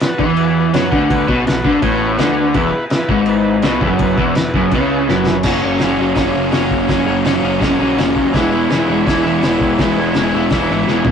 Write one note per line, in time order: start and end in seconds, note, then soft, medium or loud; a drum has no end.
0.00 0.32 B3 medium
0.00 0.32 F#4 medium
0.00 0.33 B4 medium
0.00 snare loud
0.00 crash medium
0.19 0.70 E2 loud
0.19 0.73 E3 loud
0.19 kick loud
0.37 0.68 B3 medium
0.37 0.68 F#4 medium
0.37 0.69 B4 medium
0.37 crash medium
0.73 0.91 F#2 loud
0.73 0.91 F#3 loud
0.73 1.04 B3 medium
0.73 1.04 F#4 medium
0.73 1.04 B4 loud
0.73 snare loud
0.73 crash medium
0.92 1.26 D2 loud
0.92 1.28 D3 loud
0.92 kick loud
1.09 1.40 B3 loud
1.09 1.40 F#4 loud
1.09 1.41 B4 loud
1.09 kick loud
1.09 crash medium
1.28 1.45 B1 loud
1.28 1.46 B2 loud
1.28 kick loud
1.46 1.64 B1 medium
1.46 1.61 B2 medium
1.46 1.76 B3 medium
1.46 1.77 F#4 medium
1.46 1.77 B4 medium
1.46 snare loud
1.46 crash medium
1.65 1.82 D2 loud
1.65 1.82 D3 loud
1.65 kick loud
1.81 2.16 A1 loud
1.81 2.18 A2 loud
1.81 2.12 B3 medium
1.81 2.12 F#4 medium
1.81 2.13 B4 medium
1.81 kick loud
1.81 crash medium
2.17 2.53 D2 medium
2.17 2.55 D3 loud
2.17 2.48 B3 medium
2.17 2.48 F#4 medium
2.17 2.48 B4 loud
2.17 snare loud
2.17 crash medium
2.54 2.71 E1 loud
2.54 2.72 E2 loud
2.54 2.85 B3 loud
2.54 2.85 E4 loud
2.54 2.85 B4 loud
2.54 kick loud
2.54 crash medium
2.74 muted overdriven electric guitar stroke medium
2.74 muted picked electric bass stroke soft
2.90 3.21 B3 medium
2.90 3.22 E4 medium
2.90 3.22 B4 medium
2.90 snare loud
2.90 crash medium
3.09 3.60 G#1 loud
3.09 3.63 G#2 loud
3.09 kick loud
3.26 3.57 B3 medium
3.26 3.58 E4 medium
3.26 3.58 B4 medium
3.26 crash medium
3.62 3.80 B1 medium
3.62 3.81 B2 loud
3.62 3.94 B3 medium
3.62 3.94 E4 medium
3.62 3.94 B4 medium
3.62 snare loud
3.62 crash medium
3.81 4.15 F#1 loud
3.81 4.18 F#2 loud
3.81 kick loud
3.99 4.31 B3 loud
3.99 4.31 E4 loud
3.99 kick loud
3.99 crash medium
4.03 4.31 B4 loud
4.18 4.35 E1 medium
4.18 4.36 E2 loud
4.18 kick loud
4.35 4.53 E1 medium
4.35 4.51 E2 medium
4.35 4.66 B3 medium
4.35 4.66 E4 medium
4.35 4.66 B4 medium
4.35 snare loud
4.35 crash medium
4.54 4.71 F#1 loud
4.54 4.72 F#2 loud
4.54 kick loud
4.71 5.06 C#2 loud
4.71 5.09 C#3 loud
4.71 5.02 B3 medium
4.71 5.03 E4 medium
4.71 5.03 B4 medium
4.71 kick loud
4.71 crash medium
5.08 5.42 F#1 medium
5.08 5.43 F#2 medium
5.08 5.38 B3 medium
5.08 5.39 E4 medium
5.08 5.39 B4 loud
5.08 snare medium
5.27 snare loud
5.43 5.60 F#1 medium
5.43 6.14 F#2 medium
5.43 5.79 C#3 medium
5.43 5.65 F#3 loud
5.43 5.75 C#4 loud
5.43 5.75 F#4 medium
5.43 5.75 A#4 loud
5.43 kick loud
5.43 snare loud
5.43 crash loud
5.47 5.64 A#3 medium
5.47 5.62 C#4 loud
5.63 5.79 F#1 medium
5.63 5.81 F#3 medium
5.63 5.82 A#3 medium
5.63 5.83 C#4 medium
5.79 5.97 F#1 medium
5.79 6.15 C#3 medium
5.79 6.00 F#3 medium
5.79 5.99 A#3 medium
5.79 6.11 C#4 medium
5.79 6.11 F#4 medium
5.79 6.11 A#4 medium
5.79 snare loud
5.79 open hi-hat medium
5.83 5.97 C#4 medium
5.97 6.15 F#1 medium
5.97 6.16 F#3 medium
5.97 6.17 A#3 medium
5.97 6.17 C#4 medium
6.14 6.33 F#1 medium
6.14 6.52 F#2 medium
6.14 6.50 C#3 loud
6.14 6.35 F#3 loud
6.14 6.33 A#3 loud
6.14 6.47 C#4 medium
6.14 6.32 C#4 loud
6.14 6.48 F#4 medium
6.14 6.48 A#4 medium
6.14 kick loud
6.14 snare loud
6.14 open hi-hat medium
6.33 6.52 F#1 medium
6.33 6.51 F#3 medium
6.33 6.52 A#3 medium
6.33 6.53 C#4 medium
6.51 6.70 F#1 medium
6.51 6.88 C#3 medium
6.51 6.88 F#3 medium
6.51 6.89 A#3 medium
6.51 6.84 C#4 medium
6.51 6.90 C#4 medium
6.51 6.84 F#4 medium
6.51 6.84 A#4 loud
6.51 snare loud
6.51 open hi-hat medium
6.71 6.87 F#1 loud
6.71 kick medium
6.88 7.05 F#1 medium
6.88 7.25 F#2 medium
6.88 7.22 C#3 loud
6.88 7.09 F#3 medium
6.88 7.07 A#3 loud
6.88 7.19 C#4 loud
6.88 7.05 C#4 loud
6.88 7.19 F#4 loud
6.88 7.19 A#4 loud
6.88 kick loud
6.88 snare loud
6.88 open hi-hat medium
7.06 7.23 F#1 medium
7.06 7.24 F#3 medium
7.06 7.25 A#3 medium
7.06 7.26 C#4 medium
7.23 7.41 F#1 medium
7.23 7.59 C#3 medium
7.23 7.45 F#3 medium
7.23 7.43 A#3 medium
7.23 7.56 C#4 medium
7.23 7.41 C#4 medium
7.23 7.56 F#4 medium
7.23 7.56 A#4 medium
7.23 snare loud
7.23 open hi-hat medium
7.42 7.59 F#1 medium
7.42 7.60 F#3 medium
7.42 7.61 A#3 medium
7.42 7.62 C#4 medium
7.59 7.78 F#1 medium
7.59 7.97 F#2 loud
7.59 7.96 C#3 loud
7.59 7.81 F#3 medium
7.59 7.80 A#3 loud
7.59 7.92 C#4 medium
7.59 7.78 C#4 loud
7.59 7.92 F#4 medium
7.59 7.92 A#4 medium
7.59 kick loud
7.59 snare loud
7.59 open hi-hat medium
7.79 7.96 A#1 medium
7.79 7.97 F#3 medium
7.79 7.98 A#3 medium
7.79 7.99 C#4 medium
7.96 8.14 F#1 medium
7.96 8.33 C#3 medium
7.96 8.33 F#3 medium
7.96 8.34 A#3 medium
7.96 8.27 C#4 medium
7.96 8.27 F#4 medium
7.96 8.28 A#4 medium
7.96 snare loud
7.96 open hi-hat medium
8.00 8.34 C#4 medium
8.16 8.32 D#2 medium
8.16 kick medium
8.31 8.50 E1 medium
8.31 8.70 E3 medium
8.31 8.63 E4 loud
8.31 8.63 G#4 loud
8.31 8.64 B4 loud
8.31 kick loud
8.31 snare loud
8.31 open hi-hat medium
8.35 8.55 G#3 loud
8.35 8.54 B3 loud
8.35 8.51 E4 loud
8.52 8.68 E1 medium
8.52 8.71 G#3 medium
8.52 8.72 B3 medium
8.52 8.73 E4 medium
8.69 8.86 E1 medium
8.69 9.06 E3 medium
8.69 8.92 G#3 medium
8.69 8.91 B3 medium
8.69 9.00 E4 medium
8.69 9.01 G#4 medium
8.69 9.01 B4 medium
8.69 snare loud
8.69 open hi-hat medium
8.74 8.89 E4 medium
8.88 9.04 E1 medium
8.88 9.09 B3 medium
8.88 9.09 E4 medium
8.92 9.06 G#3 medium
9.05 9.23 E1 loud
9.05 9.42 E3 loud
9.05 9.27 G#3 medium
9.05 9.26 B3 loud
9.05 9.36 E4 medium
9.05 9.36 G#4 medium
9.05 9.37 B4 medium
9.05 kick loud
9.05 snare loud
9.05 open hi-hat medium
9.10 9.24 E4 loud
9.24 9.41 E1 medium
9.24 9.43 G#3 medium
9.24 9.45 B3 medium
9.24 9.45 E4 medium
9.42 9.59 E1 medium
9.42 9.77 E3 medium
9.42 9.79 G#3 medium
9.42 9.81 B3 medium
9.42 9.73 E4 medium
9.42 9.80 E4 medium
9.42 9.74 G#4 medium
9.42 9.73 B4 medium
9.42 snare loud
9.42 open hi-hat medium
9.61 9.77 E1 medium
9.61 kick medium
9.78 9.95 E1 medium
9.78 10.14 E3 medium
9.78 9.98 G#3 medium
9.78 9.98 B3 medium
9.78 10.09 E4 loud
9.78 9.95 E4 loud
9.78 10.09 G#4 medium
9.78 10.10 B4 loud
9.78 kick loud
9.78 snare loud
9.78 open hi-hat medium
9.96 10.13 E1 medium
9.96 10.16 G#3 medium
9.96 10.17 B3 medium
9.96 10.18 E4 medium
10.14 10.31 E1 medium
10.14 10.50 E3 medium
10.14 10.36 G#3 medium
10.14 10.35 B3 medium
10.14 10.46 E4 medium
10.14 10.46 G#4 medium
10.14 snare loud
10.14 open hi-hat medium
10.18 10.33 E4 medium
10.18 10.47 B4 medium
10.34 10.50 E1 medium
10.34 10.52 G#3 medium
10.34 10.53 B3 medium
10.34 10.54 E4 medium
10.50 10.67 E1 loud
10.50 10.87 E3 medium
10.50 10.72 G#3 medium
10.50 kick loud
10.50 snare loud
10.50 open hi-hat medium
10.54 10.71 B3 loud
10.54 10.83 E4 medium
10.54 10.68 E4 loud
10.54 10.83 G#4 medium
10.54 10.83 B4 medium
10.69 10.85 G#1 medium
10.69 10.88 G#3 medium
10.69 10.90 B3 medium
10.69 10.90 E4 medium
10.87 11.03 E1 medium
10.87 11.12 E3 medium
10.87 11.12 G#3 medium
10.87 11.12 B3 medium
10.87 11.12 E4 medium
10.87 11.12 G#4 medium
10.87 11.12 B4 medium
10.87 snare medium
11.04 11.12 E1 loud
11.04 floor tom medium